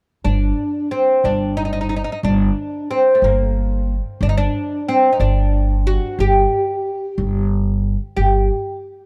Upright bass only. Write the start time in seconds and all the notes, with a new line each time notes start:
0.25 G1
1.24 G1
2.23 G1
3.22 G1
4.21 G1
5.20 G1
6.19 G1
7.18 G1
8.17 G1